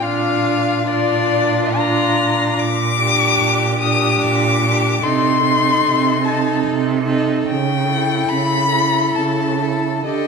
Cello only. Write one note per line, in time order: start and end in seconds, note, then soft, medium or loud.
0.05 2.56 A#2 medium
2.60 3.31 A#2 medium
3.41 4.13 A#2 medium
4.21 4.93 A#2 medium
5.03 5.75 C3 medium
5.85 6.57 C3 medium
6.67 7.38 C3 medium
7.48 8.19 C#3 medium
8.29 9.05 C#3 medium
9.16 9.96 C#3 medium
10.07 10.27 D3 medium